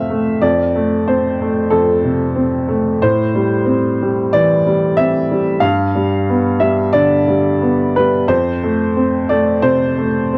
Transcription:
Already playing: C3 A3 C4 E5 F5
0.10 A3
0.42 F2 D5
0.75 A3
1.08 C4 C5
1.41 A3
1.70 F2 A4
2.04 C3
2.36 C4
2.68 A3
3.02 A2 C5
3.35 G3
3.66 C4
4.02 G3
4.33 E3 D5
4.66 G3
4.97 C4 E5
5.31 G3
5.60 G2 F5
5.95 G3
6.29 B3
6.60 G3 E5
6.93 D3 D5
7.28 G3
7.62 B3
7.96 G3 B4
8.28 F2 C5
8.64 A3
8.97 C4
9.29 A3 D5
9.62 C3 C5
9.98 A3
10.33 C4

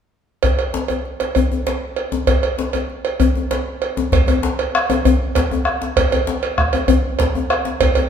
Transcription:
0.43 cowbell, djembe slap, djembe bass
0.59 cowbell
0.74 djembe slap
0.88 cowbell, djembe slap, djembe tone
1.05 djembe slap
1.20 cowbell, djembe slap
1.35 cowbell, djembe bass
1.52 djembe tone
1.67 cowbell, djembe slap
1.96 cowbell, djembe slap
2.12 djembe slap, djembe tone
2.27 cowbell, djembe slap, djembe bass
2.43 cowbell
2.58 djembe slap
2.73 cowbell, djembe slap, djembe tone
2.90 djembe slap
3.05 cowbell
3.20 cowbell, djembe bass
3.36 djembe tone
3.51 cowbell, djembe slap
3.82 cowbell, djembe slap
3.97 djembe slap, djembe tone
4.12 bombo rim, bombo low, cowbell, djembe slap, djembe bass
4.28 cowbell, djembe tone
4.43 djembe slap
4.59 cowbell
4.75 bombo rim
4.90 cowbell, djembe slap, djembe tone
5.05 bombo rim, cowbell, djembe bass
5.35 bombo low, cowbell, djembe slap
5.51 bombo rim, djembe tone
5.65 bombo rim, djembe slap
5.82 djembe slap
5.96 bombo rim, bombo low, cowbell, djembe slap, djembe bass
6.12 cowbell, djembe tone
6.27 djembe slap
6.43 cowbell
6.58 bombo rim, bombo low
6.73 cowbell, djembe tone
6.88 bombo rim, cowbell, djembe bass
7.19 bombo low, cowbell, djembe slap
7.35 bombo rim, djembe tone
7.50 bombo rim, cowbell, djembe slap
7.65 djembe slap
7.81 bombo rim, bombo low, cowbell, djembe slap, djembe bass
7.95 cowbell, djembe tone

